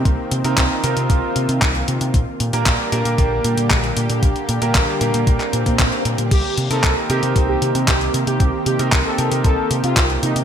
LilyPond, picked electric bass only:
\new Staff \with { instrumentName = "Picked electric bass" } { \clef bass \time 4/4 \key c \dorian \tempo 4 = 115 c,16 r16 c16 c16 c,16 r16 c16 c16 c,16 r16 c16 c16 c,8 c16 c16 | bes,,16 r16 bes,16 bes,16 bes,,16 r16 bes,16 bes,16 bes,,8 bes,16 bes,16 bes,,8 bes,16 bes,16 | bes,,16 r16 bes,16 bes,16 bes,,16 r16 bes,16 bes,16 bes,,16 r16 bes,16 bes,16 bes,,16 r16 bes,16 bes,16 | c,16 r16 c16 c16 c,16 r16 c16 c16 c,8 c16 c16 c,8 c16 c16 |
c,16 r16 c16 c16 c,16 r16 c16 c16 c,16 r16 c16 c16 c,8 c16 c16 | }